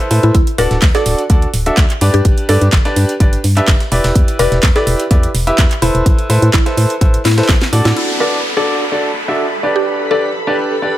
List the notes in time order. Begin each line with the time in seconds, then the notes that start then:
0.11 A2 E4 A4 B4 C5, closed hi-hat, open hi-hat
0.23 A2 E4, closed hi-hat
0.35 D2 E4, kick, closed hi-hat
0.47 closed hi-hat
0.58 D1 D4 F#4 A4 B4 D5, closed hi-hat, open hi-hat
0.71 D1, snare, closed hi-hat
0.82 D2, kick, snare, clap, closed hi-hat, open hi-hat
0.95 D4 F#4 A4 D5, snare, closed hi-hat
1.06 D1, closed hi-hat, open hi-hat
1.19 closed hi-hat
1.30 D2 D4 F#4 A4 D5, kick, closed hi-hat
1.42 closed hi-hat
1.54 D1, closed hi-hat, open hi-hat
1.66 D4 F#4 A4 E5, closed hi-hat
1.77 D2, kick, snare, clap, closed hi-hat
1.90 clap, closed hi-hat
2.01 G2 D4 G4 B4 D5, closed hi-hat, open hi-hat
2.14 G2 G4, closed hi-hat
2.25 G1, kick, closed hi-hat
2.38 closed hi-hat
2.49 G2 D4 G4 A4 B4 D5, closed hi-hat, open hi-hat
2.61 G2, closed hi-hat
2.73 G1, kick, snare, clap, closed hi-hat
2.85 D4 G4 B4 D5, snare, closed hi-hat
2.96 G2, closed hi-hat, open hi-hat
3.09 closed hi-hat
3.20 G1 D4 G4 B4 D5, kick, closed hi-hat
3.33 closed hi-hat
3.44 G2, closed hi-hat, open hi-hat
3.57 D4 G4 B4 E5, clap, closed hi-hat
3.68 G1, kick, snare, clap, closed hi-hat, open hi-hat
3.80 snare, closed hi-hat
3.92 E1 E4 G4 B4 D5, closed hi-hat, open hi-hat
4.04 E1, snare, closed hi-hat, open hi-hat
4.15 E2, kick, closed hi-hat
4.28 closed hi-hat
4.39 E1 E4 G4 B4 D5, closed hi-hat, open hi-hat
4.52 E1, snare, closed hi-hat
4.63 E2, kick, snare, clap, closed hi-hat, open hi-hat
4.76 E4 G4 A4 B4 D5, snare, closed hi-hat
4.87 E1, closed hi-hat, open hi-hat
5.00 closed hi-hat
5.11 E2 E4 G4 B4 D5, kick, closed hi-hat
5.23 closed hi-hat
5.35 E1, closed hi-hat, open hi-hat
5.47 E4 G4 B4 E5, closed hi-hat
5.58 E2, kick, snare, clap, closed hi-hat
5.71 clap, closed hi-hat
5.82 E1 E4 A4 B4 C5, closed hi-hat, open hi-hat
5.95 E1, closed hi-hat
6.06 A1, kick, closed hi-hat
6.19 closed hi-hat
6.30 A2 E4 A4 B4 C5, closed hi-hat, open hi-hat
6.42 A2, closed hi-hat
6.54 A1 E4, kick, snare, clap, closed hi-hat
6.66 E4 A4 B4 C5, snare, closed hi-hat
6.77 A2, closed hi-hat, open hi-hat
6.90 closed hi-hat
7.01 A1 E4 A4 B4 C5, kick, closed hi-hat
7.14 closed hi-hat
7.25 A2 E4, snare, open hi-hat
7.31 snare, open hi-hat
7.37 E4 A4 B4 C5, snare, closed hi-hat, open hi-hat
7.43 snare, open hi-hat
7.49 A1, kick, snare, clap, closed hi-hat
7.61 snare, closed hi-hat
7.73 A2 D4 F#4 A4 D5, closed hi-hat, open hi-hat
7.85 A2 E4, snare, closed hi-hat
7.96 E4 A4 B5, crash, downlifter
8.20 D4 F#4 A4 B4 D5
8.57 D4 F#4 A4 D5
8.92 D4 F#4 A4 D5
9.28 D4 F#4 A4 E5
9.63 D4 G4 B4 D5
9.76 G4
10.11 D4 G4 A4 B4 D5
10.47 D4 G4 B4 D5
10.82 D4 G4 B4 D5